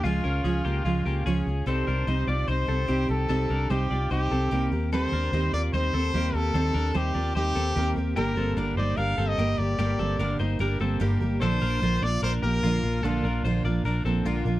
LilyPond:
<<
  \new Staff \with { instrumentName = "Trumpet" } { \time 4/4 \key c \dorian \tempo 4 = 148 f'2.~ f'8 r8 | c''4. d''8 c''4. a'8~ | a'4 g'4 g'4. r8 | c''4. d''8 c''4. a'8~ |
a'4 g'4 g'4. r8 | bes'4 r8 d''8 f''8. ees''8. d''8~ | d''4. r2 r8 | c''4. d''8 c''8 bes'4. |
f'4 r2. | }
  \new Staff \with { instrumentName = "Clean electric guitar" } { \time 4/4 \key c \dorian <aes f'>8 <des' bes'>8 <des' aes'>8 <bes g'>8 <aes f'>8 <bes g'>8 <des' aes'>4 | <c' a'>8 <d' bes'>8 <ees' c''>8 <f' d''>8 <ees' c''>8 <c' a'>8 <c' g'>4 | <c' a'>8 <d' bes'>8 <ees' c''>8 <f' d''>8 <ees' c''>8 <c' a'>8 <bes g'>4 | <c' a'>8 <d' bes'>8 <ees' c''>8 <f' d''>8 <ees' c''>8 <c' a'>8 <bes g'>4 |
<c' a'>8 <d' bes'>8 <ees' c''>8 <f' d''>8 <ees' c''>8 <c' a'>8 <bes g'>4 | <bes g'>8 <c' a'>8 <d' bes'>8 <ees' c''>8 <d' bes'>8 <c' a'>8 <bes g'>4 | <bes g'>8 <c' a'>8 <d' bes'>8 <ees' c''>8 <d' bes'>8 <c' a'>8 <bes g'>4 | <d' a'>8 <d' bes'>8 <f' c''>8 <f' d''>8 <d' bes'>8 <bes g'>8 <bes f'>4 |
<d' a'>8 <d' bes'>8 <f' c''>8 <f' d''>8 <d' bes'>8 <c' a'>8 <bes f'>4 | }
  \new Staff \with { instrumentName = "Steel-string acoustic guitar" } { \time 4/4 \key c \dorian <des f des' f' aes'>8 <des' f' aes'>8 <des f des' f' aes'>8 <des' f' aes'>8 <f des' f' aes'>8 <des' f' aes'>8 <des f des' f' aes'>8 <des' f' aes'>8 | <c g c' ees' g'>8 <c' ees' g'>8 <c g c' ees' g'>8 <c' ees' g'>8 <g c' ees' g'>8 <c' ees' g'>8 <c g c' ees' g'>8 <c' ees' g'>8 | <c g c' ees' g'>8 <c' ees' g'>8 <c g c' ees' g'>8 <c' ees' g'>8 <g c' ees' g'>8 <c' ees' g'>8 <c g c' ees' g'>8 <c' g' bes'>8 | <ees g c' g' bes'>8 bes'8 <ees g c' g' bes'>8 <c' g' bes'>8 <g c' g' bes'>8 <c' g' bes'>8 <ees g c' g' bes'>8 <c' g' bes'>8 |
<ees g c' g' bes'>8 <c' g' bes'>8 <ees g c' g' bes'>8 <c' g' bes'>8 <g c' g' bes'>8 <c' g' bes'>8 <ees g c' g' bes'>8 <c' g' bes'>8 | <g, d g bes g' bes'>8 <g bes g' bes'>8 <g, d g bes g' bes'>8 <g bes g' bes'>8 <g bes g' bes'>8 <g bes g' bes'>8 <g, d g bes g' bes'>8 <g bes g' bes'>8 | <g, d g bes g' bes'>8 <g bes g' bes'>8 <g, d g bes g' bes'>8 <g bes g' bes'>8 <g bes g' bes'>8 <g bes g' bes'>8 <g, d g bes g' bes'>8 <g bes g' bes'>8 | <bes, d f bes d' bes'>8 <f bes d' bes'>8 <bes, d f bes d' bes'>8 <f bes d' bes'>8 <f bes d' bes'>8 <f bes d' bes'>8 <bes, d f bes d' bes'>8 <f bes d' bes'>8 |
<bes, d f bes d' bes'>8 <f bes d' bes'>8 <bes, d f bes d' bes'>8 <f bes d' bes'>8 <f bes d' bes'>8 <f bes d' bes'>8 <bes, d f bes d' bes'>8 <f bes d' bes'>8 | }
  \new Staff \with { instrumentName = "Fingered electric bass" } { \clef bass \time 4/4 \key c \dorian des,8 des,8 des,8 des,8 des,8 des,8 des,8 des,8 | c,8 c,8 c,8 c,8 c,8 c,8 c,8 c,8 | c,8 c,8 c,8 c,8 c,8 c,8 c,8 ees,8~ | ees,8 ees,8 ees,8 ees,8 ees,8 ees,8 ees,8 ees,8 |
ees,8 ees,8 ees,8 ees,8 ees,8 ees,8 ees,8 ees,8 | g,,8 g,,8 g,,8 g,,8 g,,8 g,,8 g,,8 g,,8 | g,,8 g,,8 g,,8 g,,8 g,,8 g,,8 g,,8 g,,8 | bes,,8 bes,,8 bes,,8 bes,,8 bes,,8 bes,,8 bes,,8 bes,,8 |
bes,,8 bes,,8 bes,,8 bes,,8 bes,,8 bes,,8 bes,,8 bes,,8 | }
>>